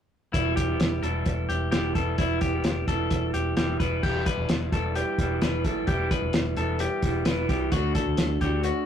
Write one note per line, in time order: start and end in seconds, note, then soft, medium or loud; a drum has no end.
0.33 0.53 E1 medium
0.33 0.68 E3 medium
0.33 0.69 G3 medium
0.33 0.68 B3 medium
0.33 0.56 E4 medium
0.33 0.67 E4 medium
0.33 kick medium
0.33 closed hi-hat medium
0.56 0.76 E1 medium
0.56 1.03 G4 medium
0.56 kick medium
0.56 closed hi-hat medium
0.68 1.02 G3 soft
0.68 1.03 B3 soft
0.68 1.03 E4 soft
0.79 0.99 E1 medium
0.79 snare medium
0.79 closed hi-hat medium
1.02 1.22 E1 medium
1.02 1.71 E3 medium
1.02 1.72 G3 medium
1.02 1.73 B3 medium
1.02 1.74 E4 medium
1.02 1.46 A4 medium
1.02 closed hi-hat medium
1.26 1.45 E1 medium
1.26 kick medium
1.26 closed hi-hat medium
1.49 1.68 E1 medium
1.49 1.70 G4 medium
1.49 closed hi-hat medium
1.71 1.91 E1 medium
1.71 1.94 E3 medium
1.71 1.95 G3 medium
1.71 1.96 B3 medium
1.71 1.96 E4 medium
1.71 1.95 G4 medium
1.71 snare medium
1.71 closed hi-hat medium
1.95 2.14 E1 medium
1.95 2.17 E3 medium
1.95 2.18 G3 medium
1.95 2.18 B3 medium
1.95 2.19 E4 medium
1.95 2.18 A4 medium
1.95 kick medium
1.95 closed hi-hat medium
2.18 2.37 E1 medium
2.18 2.53 E3 medium
2.18 2.53 G3 medium
2.18 2.53 B3 medium
2.18 2.41 E4 medium
2.18 2.51 E4 medium
2.18 kick medium
2.18 closed hi-hat medium
2.41 2.61 E1 medium
2.41 2.85 G4 medium
2.41 kick medium
2.41 closed hi-hat medium
2.53 2.87 G3 soft
2.53 2.88 B3 soft
2.53 2.88 E4 soft
2.64 2.83 E1 medium
2.64 snare medium
2.64 closed hi-hat medium
2.87 3.07 E1 medium
2.87 3.57 E3 medium
2.87 3.58 G3 medium
2.87 3.59 B3 medium
2.87 3.59 E4 medium
2.87 3.31 A4 medium
2.87 kick medium
2.87 snare soft
2.87 closed hi-hat medium
3.11 3.30 E1 medium
3.11 kick medium
3.11 closed hi-hat medium
3.34 3.53 E1 medium
3.34 3.56 G4 medium
3.34 closed hi-hat medium
3.56 3.76 E1 medium
3.56 3.78 E3 medium
3.56 3.79 G3 medium
3.56 3.80 B3 medium
3.56 3.81 E4 medium
3.56 3.79 G4 medium
3.56 snare medium
3.56 closed hi-hat medium
3.79 3.99 E1 medium
3.79 4.02 E3 medium
3.79 4.02 G3 medium
3.79 4.03 B3 medium
3.79 4.04 E4 medium
3.79 4.03 B4 medium
3.79 kick medium
3.79 closed hi-hat medium
4.03 4.22 E1 medium
4.03 4.71 E3 medium
4.03 4.72 G3 medium
4.03 4.73 B3 medium
4.03 4.73 E4 medium
4.03 4.26 G4 medium
4.03 kick medium
4.03 crash medium
4.26 4.70 B4 medium
4.26 kick medium
4.26 closed hi-hat medium
4.37 4.47 E1 medium
4.49 4.68 E1 medium
4.49 snare loud
4.49 closed hi-hat medium
4.72 5.01 E1 medium
4.72 5.17 E3 medium
4.72 5.18 G3 medium
4.72 5.19 B3 medium
4.72 5.20 E4 medium
4.72 4.96 A4 medium
4.72 kick medium
4.72 snare soft
4.72 closed hi-hat medium
4.95 5.39 G4 medium
4.95 closed hi-hat medium
5.18 5.37 E1 medium
5.18 5.41 E3 medium
5.18 5.42 G3 medium
5.18 5.43 B3 medium
5.18 5.43 E4 medium
5.18 kick medium
5.18 closed hi-hat medium
5.41 5.64 E1 medium
5.41 5.63 E3 medium
5.41 5.64 G3 medium
5.41 5.65 B3 medium
5.41 5.66 E4 medium
5.41 5.65 B4 medium
5.41 snare medium
5.41 closed hi-hat medium
5.64 5.84 F#1 medium
5.64 5.86 E3 medium
5.64 5.87 G3 medium
5.64 5.88 B3 medium
5.64 5.88 E4 medium
5.64 5.88 A4 medium
5.64 kick medium
5.64 closed hi-hat medium
5.87 6.07 E1 medium
5.87 6.55 E3 medium
5.87 6.56 G3 medium
5.87 6.58 B3 medium
5.87 6.58 E4 medium
5.87 6.11 G4 medium
5.87 kick loud
5.87 closed hi-hat medium
6.11 6.54 B4 medium
6.11 kick medium
6.11 closed hi-hat medium
6.22 6.32 E1 medium
6.33 6.53 E1 medium
6.33 snare loud
6.33 closed hi-hat medium
6.57 6.85 E1 medium
6.57 7.01 E3 medium
6.57 7.02 G3 medium
6.57 7.03 B3 medium
6.57 7.04 E4 medium
6.57 6.80 A4 medium
6.57 closed hi-hat medium
6.79 7.24 G4 medium
6.79 closed hi-hat medium
7.02 7.22 E1 medium
7.02 7.24 E3 medium
7.02 7.25 G3 medium
7.02 7.26 B3 medium
7.02 7.27 E4 medium
7.02 kick medium
7.02 closed hi-hat medium
7.25 7.45 E1 medium
7.25 7.47 E3 medium
7.25 7.48 G3 medium
7.25 7.49 B3 medium
7.25 7.50 E4 medium
7.25 7.49 B4 medium
7.25 snare medium
7.25 closed hi-hat medium
7.49 7.68 C2 medium
7.49 7.71 E3 medium
7.49 7.72 G3 medium
7.49 7.72 B3 medium
7.49 7.73 E4 medium
7.49 7.72 G4 medium
7.49 kick medium
7.49 closed hi-hat medium
7.72 7.91 D2 medium
7.72 8.40 D3 medium
7.72 8.41 A3 medium
7.72 8.42 D4 medium
7.72 7.95 F#4 medium
7.72 8.42 F#4 medium
7.72 kick medium
7.72 closed hi-hat medium
7.95 8.39 A4 medium
7.95 kick medium
7.95 closed hi-hat medium
8.06 8.16 D2 medium
8.17 snare medium
8.17 closed hi-hat medium
8.41 8.69 D2 medium
8.41 8.86 D3 medium
8.41 8.86 A3 medium
8.41 8.86 D4 medium
8.41 8.86 F#4 medium
8.41 8.64 G4 medium
8.41 kick medium
8.41 snare soft
8.41 closed hi-hat medium
8.63 8.86 F#4 medium
8.63 closed hi-hat medium